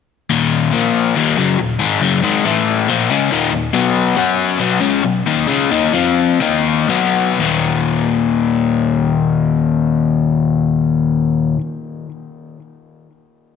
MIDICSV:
0, 0, Header, 1, 2, 480
1, 0, Start_track
1, 0, Key_signature, -6, "minor"
1, 0, Tempo, 428571
1, 343, Time_signature, 4, 2, 24, 8
1, 4664, Tempo, 445765
1, 6584, Tempo, 483481
1, 8024, Tempo, 505051
1, 13881, End_track
2, 0, Start_track
2, 0, Title_t, "Overdriven electric guitar"
2, 0, Program_c, 0, 29
2, 335, Note_on_c, 0, 39, 97
2, 341, Note_on_c, 0, 46, 106
2, 349, Note_on_c, 0, 51, 111
2, 788, Note_off_c, 0, 46, 0
2, 801, Note_on_c, 0, 46, 76
2, 810, Note_off_c, 0, 39, 0
2, 810, Note_off_c, 0, 51, 0
2, 814, Note_on_c, 0, 53, 74
2, 820, Note_on_c, 0, 58, 85
2, 1283, Note_off_c, 0, 46, 0
2, 1290, Note_off_c, 0, 53, 0
2, 1292, Note_off_c, 0, 58, 0
2, 1293, Note_on_c, 0, 39, 83
2, 1301, Note_on_c, 0, 46, 87
2, 1307, Note_on_c, 0, 51, 103
2, 1524, Note_off_c, 0, 39, 0
2, 1529, Note_on_c, 0, 42, 90
2, 1533, Note_off_c, 0, 46, 0
2, 1536, Note_off_c, 0, 51, 0
2, 1539, Note_on_c, 0, 49, 98
2, 1547, Note_on_c, 0, 54, 96
2, 1767, Note_off_c, 0, 42, 0
2, 1772, Note_off_c, 0, 49, 0
2, 1776, Note_off_c, 0, 54, 0
2, 1777, Note_on_c, 0, 39, 66
2, 1783, Note_on_c, 0, 46, 71
2, 1970, Note_off_c, 0, 39, 0
2, 1973, Note_off_c, 0, 46, 0
2, 2006, Note_on_c, 0, 44, 102
2, 2016, Note_on_c, 0, 51, 99
2, 2020, Note_on_c, 0, 56, 114
2, 2245, Note_off_c, 0, 44, 0
2, 2250, Note_off_c, 0, 51, 0
2, 2253, Note_off_c, 0, 56, 0
2, 2255, Note_on_c, 0, 42, 99
2, 2260, Note_on_c, 0, 49, 99
2, 2268, Note_on_c, 0, 54, 103
2, 2486, Note_off_c, 0, 49, 0
2, 2490, Note_off_c, 0, 42, 0
2, 2490, Note_on_c, 0, 44, 76
2, 2496, Note_off_c, 0, 54, 0
2, 2501, Note_on_c, 0, 51, 81
2, 2503, Note_on_c, 0, 56, 93
2, 2728, Note_off_c, 0, 44, 0
2, 2733, Note_off_c, 0, 51, 0
2, 2734, Note_off_c, 0, 56, 0
2, 2734, Note_on_c, 0, 45, 79
2, 2743, Note_on_c, 0, 52, 77
2, 2756, Note_on_c, 0, 57, 79
2, 3210, Note_off_c, 0, 45, 0
2, 3214, Note_off_c, 0, 52, 0
2, 3221, Note_off_c, 0, 57, 0
2, 3230, Note_on_c, 0, 46, 91
2, 3234, Note_on_c, 0, 53, 93
2, 3243, Note_on_c, 0, 58, 104
2, 3458, Note_off_c, 0, 46, 0
2, 3460, Note_off_c, 0, 53, 0
2, 3464, Note_off_c, 0, 58, 0
2, 3470, Note_on_c, 0, 49, 86
2, 3474, Note_on_c, 0, 56, 90
2, 3479, Note_on_c, 0, 61, 91
2, 3698, Note_off_c, 0, 49, 0
2, 3700, Note_off_c, 0, 56, 0
2, 3702, Note_off_c, 0, 61, 0
2, 3707, Note_on_c, 0, 39, 105
2, 3708, Note_on_c, 0, 46, 114
2, 3717, Note_on_c, 0, 51, 121
2, 3927, Note_off_c, 0, 39, 0
2, 3933, Note_off_c, 0, 46, 0
2, 3940, Note_on_c, 0, 39, 64
2, 3942, Note_off_c, 0, 51, 0
2, 3946, Note_on_c, 0, 46, 75
2, 4133, Note_off_c, 0, 39, 0
2, 4136, Note_off_c, 0, 46, 0
2, 4181, Note_on_c, 0, 47, 91
2, 4186, Note_on_c, 0, 54, 104
2, 4195, Note_on_c, 0, 59, 113
2, 4648, Note_off_c, 0, 54, 0
2, 4656, Note_off_c, 0, 47, 0
2, 4662, Note_on_c, 0, 54, 77
2, 4663, Note_off_c, 0, 59, 0
2, 4674, Note_on_c, 0, 61, 77
2, 4675, Note_on_c, 0, 66, 88
2, 5112, Note_off_c, 0, 54, 0
2, 5115, Note_on_c, 0, 47, 88
2, 5125, Note_on_c, 0, 54, 102
2, 5127, Note_off_c, 0, 61, 0
2, 5131, Note_off_c, 0, 66, 0
2, 5131, Note_on_c, 0, 59, 93
2, 5348, Note_off_c, 0, 47, 0
2, 5353, Note_on_c, 0, 49, 80
2, 5357, Note_off_c, 0, 54, 0
2, 5360, Note_off_c, 0, 59, 0
2, 5362, Note_on_c, 0, 56, 94
2, 5364, Note_on_c, 0, 61, 100
2, 5592, Note_off_c, 0, 49, 0
2, 5596, Note_off_c, 0, 56, 0
2, 5597, Note_off_c, 0, 61, 0
2, 5599, Note_on_c, 0, 47, 75
2, 5603, Note_on_c, 0, 54, 78
2, 5795, Note_off_c, 0, 47, 0
2, 5797, Note_off_c, 0, 54, 0
2, 5846, Note_on_c, 0, 51, 86
2, 5849, Note_on_c, 0, 58, 98
2, 5860, Note_on_c, 0, 63, 98
2, 6072, Note_off_c, 0, 51, 0
2, 6077, Note_on_c, 0, 49, 93
2, 6078, Note_off_c, 0, 58, 0
2, 6082, Note_on_c, 0, 56, 99
2, 6089, Note_off_c, 0, 63, 0
2, 6093, Note_on_c, 0, 61, 97
2, 6321, Note_off_c, 0, 49, 0
2, 6324, Note_off_c, 0, 56, 0
2, 6329, Note_off_c, 0, 61, 0
2, 6331, Note_on_c, 0, 51, 85
2, 6335, Note_on_c, 0, 58, 101
2, 6340, Note_on_c, 0, 63, 91
2, 6565, Note_off_c, 0, 51, 0
2, 6570, Note_on_c, 0, 53, 76
2, 6574, Note_off_c, 0, 58, 0
2, 6578, Note_off_c, 0, 63, 0
2, 6578, Note_on_c, 0, 60, 87
2, 6585, Note_on_c, 0, 65, 80
2, 7032, Note_off_c, 0, 53, 0
2, 7036, Note_on_c, 0, 51, 89
2, 7039, Note_off_c, 0, 60, 0
2, 7043, Note_off_c, 0, 65, 0
2, 7043, Note_on_c, 0, 58, 87
2, 7052, Note_on_c, 0, 63, 98
2, 7513, Note_off_c, 0, 51, 0
2, 7517, Note_on_c, 0, 47, 90
2, 7518, Note_off_c, 0, 58, 0
2, 7523, Note_off_c, 0, 63, 0
2, 7526, Note_on_c, 0, 54, 107
2, 7531, Note_on_c, 0, 59, 105
2, 8007, Note_on_c, 0, 39, 95
2, 8010, Note_off_c, 0, 47, 0
2, 8015, Note_off_c, 0, 54, 0
2, 8017, Note_off_c, 0, 59, 0
2, 8029, Note_on_c, 0, 46, 103
2, 8049, Note_on_c, 0, 51, 96
2, 11978, Note_off_c, 0, 39, 0
2, 12000, Note_off_c, 0, 46, 0
2, 12019, Note_off_c, 0, 51, 0
2, 13881, End_track
0, 0, End_of_file